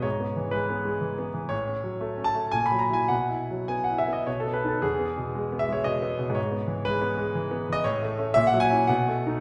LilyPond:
<<
  \new Staff \with { instrumentName = "Grand piano" } { \time 3/4 \key e \major \tempo 4 = 118 cis''4 b'4. r8 | cis''4. a''8 gis''16 b''16 ais''16 gis''16 | fis''4 gis''16 fis''16 e''16 dis''16 cis''16 a'16 b'16 a'16 | gis'4. e''16 cis''16 dis''4 |
cis''4 b'4.~ b'16 dis''16 | cis''4 e''16 fis''16 gis''8 fis''4 | }
  \new Staff \with { instrumentName = "Grand piano" } { \clef bass \time 3/4 \key e \major \tuplet 3/2 { gis,8 b8 e8 gis8 b8 gis8 e8 b8 e8 } | \tuplet 3/2 { a,8 cis'8 fis8 a8 cis'8 a8 ais,8 fis8 <fis e'>8 } | \tuplet 3/2 { b,8 e'8 fis8 b8 e'8 b8 b,8 b8 <b dis'>8 } | \tuplet 3/2 { e,8 b8 b,8 gis8 b8 gis8 b,8 b8 b,8 } |
\tuplet 3/2 { gis,8 b8 e8 gis8 b8 gis8 e8 b8 e8 } | \tuplet 3/2 { a,8 a8 <a cis'>8 ais,8 fis8 <cis' e'>8 b,8 a8 <a dis'>8 } | }
>>